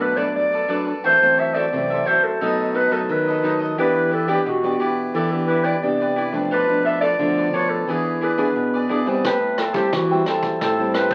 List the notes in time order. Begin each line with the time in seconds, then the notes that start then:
Already playing: B2 F#3 A3 D4
0.00 D4 A4 B4 D5
0.17 F#3 A3 D4 A4 B4 D5
0.36 G2 D5
0.52 A4 B4 D5
0.68 F#3 A3 D4 A4 B4 D5
0.85 A4 B4 D5
1.04 F#2 E3 A3 C4 F#4 A4 C5 E5
1.22 E3 A3 C4
1.37 F#4 A4 C5 E5
1.54 F#4 A4 C5 D5 E5
1.73 F#2 C3 E3 A3 C4
1.90 A4 C5 E5
2.05 F#4 A4 C5 E5
2.24 A4
2.41 B2 F#3 A3 D#4 A4 B4 D#5
2.74 D#4 A4 B4 D#5
2.91 F#3 A3 D#4 A4 B4 D#5
3.09 F#2 D#3 B4
3.27 A4 B4 D#5
3.43 F#3 A3 D#4 A4 B4 D#5
3.60 A4 B4 D#5
3.78 E3 B3 D4 E4 G4 B4 D5
4.11 E4 G4 A4 B4 D5
4.27 B3 D4 E4 G4 B4 D5
4.46 B2 F#4
4.64 B3 D4 G4 B4 D5
4.80 E4 G4 B4 D5
5.14 E3 E4 G4 A4 B4 D5
5.32 B3 D4 G4
5.48 E4 G4 B4 D5
5.64 E4 G4 B4 D5
5.83 C3 B3 D4 G4 D5
6.00 G4 B4 D5
6.16 E4 G4 B4 D5
6.33 F3 A3 D4 G4 B4 D5
6.51 B2 F4 A4 B4 D5
6.69 F3 A3 D4
6.85 F4 A4 B4 D5 E5
7.01 F4 A4 B4 D5
7.19 B2 D3 F3 A3 D4
7.37 A4 B4 D5
7.53 F4 A4 B4 C#5 D5
7.70 A4
7.88 E3 B3 D4 E4 G#4 B4 D5
8.21 E4 G#4 B4 D5
8.38 B3 D4 E4 G#4 B4 D5
8.57 B2
8.74 G#4 B4 D5
8.89 B3 D4 E4 G#4 B4 D5
9.06 G3 C4 E4 G#4 B4 D5
9.24 A2 A4 B4 E5 G5, kick, cross-stick, closed hi-hat
9.58 A4 C5 E5 G5, cross-stick, closed hi-hat
9.74 G3 C4 E4 G4 A4 C5 E5 G5, kick, closed hi-hat
9.93 E3 F#4, kick, cross-stick, closed hi-hat
10.11 G3 C4 E4 C5 E5 G5
10.26 A4 C5 E5 G5, cross-stick, closed hi-hat
10.43 kick, closed hi-hat
10.61 A2 A4 C5 E5 G5, kick, cross-stick, closed hi-hat
10.79 G3 C4 E4
10.94 A4 B4 C5 E5 G5, cross-stick, closed hi-hat
11.11 A4 C5, kick